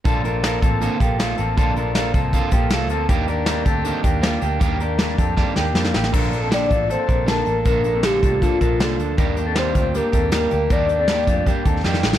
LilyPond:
<<
  \new Staff \with { instrumentName = "Soft synth lead" } { \time 4/4 \key bes \major \tempo 4 = 158 r1 | r1 | r1 | r1 |
r4 d''4 c''4 bes'4 | bes'4 g'4 f'4. r8 | r4 c''4 bes'4 bes'4 | d''2 r2 | }
  \new Staff \with { instrumentName = "Clean electric guitar" } { \time 4/4 \key bes \major <d' a'>8 <d' bes'>8 <d' bes'>8 <c' a'>4 <bes g'>8 <a f'>8 <c' a'>8 | <d' a'>8 <d' bes'>8 <d' bes'>8 <c' a'>4 <bes g'>8 <a f'>8 <c' a'>8 | <bes g'>8 <d' bes'>8 <d' bes'>8 <c' a'>4 <bes g'>8 <bes f'>8 <bes g'>8 | <bes g'>8 <d' bes'>8 <d' bes'>8 <c' a'>4 <bes g'>8 <bes f'>8 <bes g'>8 |
<d' bes'>8. <c' a'>16 <bes g'>8 <a f'>8 <d' a'>8 <d' bes'>8 <d' a''>4 | <d' bes'>8. <c' a'>16 <bes g'>8 <a f'>8 <d' a'>8 <d' bes'>8 <d' a'>4 | <d' bes'>8. <c' a'>16 <bes g'>8 <a f'>8 <bes g'>8 <c' a'>8 <bes g'>4 | <d' bes'>8. <c' a'>16 <bes g'>8 <a f'>8 <bes g'>8 <c' a'>8 <bes g'>4 | }
  \new Staff \with { instrumentName = "Clean electric guitar" } { \time 4/4 \key bes \major <bes, d f bes f' a'>8 <f bes f' a'>8 <f bes f' a'>8 <f bes f' a'>8 <bes, d f bes f' a'>8 <f bes f' a'>8 <f bes f' a'>8 <f bes f' a'>8 | <bes, d f bes f' a'>8 <f bes f' a'>8 <f bes f' a'>8 <f bes f' a'>8 <bes, d f bes f' a'>8 <f bes f' a'>8 <f bes f' a'>8 <f bes f' a'>8 | <ees g bes d' g'>8 <bes d' g'>8 <g bes d' g'>8 <bes d' g'>8 <ees g bes d' g'>8 <bes d' g'>8 <g bes d' g'>8 <bes d' g'>8 | <ees g bes d' g'>8 <bes d' g'>8 <g bes d' g'>8 <bes d' g'>8 <ees g bes d' g'>8 <bes d' g'>8 <g bes d' g'>8 <bes d' g'>8 |
<bes, d f bes d' a'>8 <f bes d' a'>8 <bes, d f bes d' a'>8 <f bes d' a'>8 <f bes d' a'>8 <f bes d' a'>8 <bes, d f bes d' a'>8 <f bes d' a'>8 | <bes, d f bes d' a'>8 <f bes d' a'>8 <bes, d f bes d' a'>8 <f bes d' a'>8 <f bes d' a'>8 <f bes d' a'>8 <bes, d f bes d' a'>8 <f bes d' a'>8 | <ees g bes d' g'>8 <bes d' g'>8 <ees g bes d' g'>8 <bes d' g'>8 <g bes d' g'>8 <bes d' g'>8 <ees g bes d' g'>8 <bes d' g'>8 | <ees g bes d' g'>8 <bes d' g'>8 <ees g bes d' g'>8 <bes d' g'>8 <g bes d' g'>8 <bes d' g'>8 <ees g bes d' g'>8 <bes d' g'>8 | }
  \new Staff \with { instrumentName = "Picked electric bass" } { \clef bass \time 4/4 \key bes \major bes,,4. a,,8. r16 bes,,4 a,,8 | bes,,4. c,8. r16 bes,,8 c,8 d,8 | ees,4. d,8. r16 ees,4 d,8 | ees,4. f,8. r16 ees,8 f,8 a,,8 |
bes,,4. a,,8. r16 bes,,4 a,,8 | bes,,4. c,8. r16 bes,,8 c,8 d,8 | ees,4. d,8. r16 ees,4 d,8 | ees,4. f,8. r16 ees,8 f,8 a,,8 | }
  \new DrumStaff \with { instrumentName = "Drums" } \drummode { \time 4/4 <hh bd>8 hh8 <hh sn>8 <hh bd>8 hh8 <hh bd>8 <hh sn>8 hh8 | <hh bd>8 hh8 <hh sn>8 <hh bd>8 <hh bd>8 <hh bd>8 <hh sn>8 hh8 | <hh bd>8 hh8 <hh sn>8 <hh bd>8 hh8 <hh bd>8 <hh sn>8 hh8 | <hh bd>8 hh8 <hh sn>8 <hh bd>8 <bd sn>8 sn8 sn16 sn16 sn16 sn16 |
<cymc bd>8 hh8 <hh sn>8 <hh bd>8 hh8 <hh bd>8 <hh sn>8 hh8 | <hh bd>8 hh8 <hh sn>8 <hh bd>8 <hh bd>8 <hh bd>8 <hh sn>8 hh8 | <hh bd>8 hh8 <hh sn>8 <hh bd>8 hh8 <hh bd>8 <hh sn>8 hh8 | <hh bd>8 hh8 <hh sn>8 <hh bd>8 <hh bd>8 <hh bd>8 sn16 sn16 sn16 sn16 | }
>>